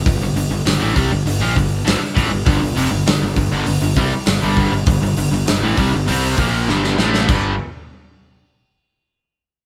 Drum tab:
CC |----------------|----------------|----------------|x---------------|
HH |o-o-o-o-o-o-o-o-|o-o-o-o-o-o-o-o-|o-o-o-o-o-o-----|----------------|
SD |----o-------o---|----o-------o---|----o-------oooo|----------------|
BD |o-----o---o---o-|o-----o---o---o-|o-----o---o-----|o---------------|